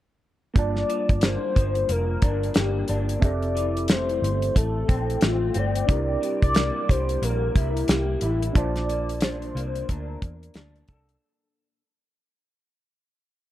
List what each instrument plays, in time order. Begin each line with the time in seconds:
0.54 picked electric bass G1, clean electric guitar G2, reed electric piano A#3 D4 F4, soft synth lead D5, kick, closed hi-hat
0.59 reed electric piano A5
0.76 snare
0.89 clean electric guitar F3, closed hi-hat
1.09 picked electric bass G1, kick, closed hi-hat
1.21 clean electric guitar A#3, soft synth lead C5, snare, closed hi-hat
1.56 picked electric bass G1, clean electric guitar F3, kick, closed hi-hat
1.75 closed hi-hat
1.89 picked electric bass F1, clean electric guitar A#3, soft synth lead A#4, closed hi-hat
2.22 picked electric bass G1, clean electric guitar D4, kick, closed hi-hat
2.43 closed hi-hat
2.54 picked electric bass G1, clean electric guitar A#3, soft synth lead G4, snare, closed hi-hat
2.88 picked electric bass G1, clean electric guitar D4, closed hi-hat
3.09 closed hi-hat
3.20 picked electric bass F1, clean electric guitar F2, reed electric piano C4 G4 E5, soft synth lead D5, kick, closed hi-hat
3.25 reed electric piano A4
3.42 closed hi-hat
3.55 clean electric guitar E3, closed hi-hat
3.77 closed hi-hat
3.88 clean electric guitar A3, soft synth lead C5, snare, closed hi-hat
4.09 closed hi-hat
4.22 picked electric bass G1, closed hi-hat
4.42 closed hi-hat
4.55 picked electric bass A1, clean electric guitar A3, soft synth lead A4, kick, closed hi-hat
4.88 picked electric bass A#1, clean electric guitar C4, kick, closed hi-hat
5.10 closed hi-hat
5.21 picked electric bass A1, clean electric guitar A3, soft synth lead F4, snare, closed hi-hat
5.54 picked electric bass G1, clean electric guitar C4, soft synth lead D5, closed hi-hat
5.75 closed hi-hat
5.87 picked electric bass C2, clean electric guitar C3, reed electric piano D4 E4 G4, kick, closed hi-hat
5.92 reed electric piano A#4
6.22 clean electric guitar G3, closed hi-hat
6.42 picked electric bass C2, soft synth lead D5, kick, closed hi-hat
6.55 clean electric guitar A#3, snare, closed hi-hat
6.89 picked electric bass C2, clean electric guitar G3, soft synth lead C5, kick, closed hi-hat
7.09 closed hi-hat
7.22 picked electric bass A#1, clean electric guitar A#3, soft synth lead A#4, closed hi-hat
7.55 picked electric bass C2, clean electric guitar E4, kick, closed hi-hat
7.77 closed hi-hat
7.88 picked electric bass C2, clean electric guitar A#3, soft synth lead G4, snare, closed hi-hat
8.21 picked electric bass A1, clean electric guitar E4, closed hi-hat
8.42 closed hi-hat
8.53 picked electric bass A#1, clean electric guitar A#2, reed electric piano D4 F4 A5, soft synth lead D5, kick, closed hi-hat
8.58 reed electric piano C5
8.76 snare, closed hi-hat
8.89 clean electric guitar A#3, closed hi-hat
9.09 closed hi-hat
9.21 clean electric guitar D4, soft synth lead C5, snare, closed hi-hat
9.42 closed hi-hat
9.55 picked electric bass C2, clean electric guitar A#3, closed hi-hat
9.75 closed hi-hat
9.89 picked electric bass D2, clean electric guitar D4, soft synth lead A#4, kick, closed hi-hat
10.22 picked electric bass E2, kick, closed hi-hat
10.43 closed hi-hat
10.54 picked electric bass D2, clean electric guitar D4, snare, closed hi-hat
10.76 closed hi-hat
10.88 picked electric bass C2, clean electric guitar A4, kick, closed hi-hat
11.09 closed hi-hat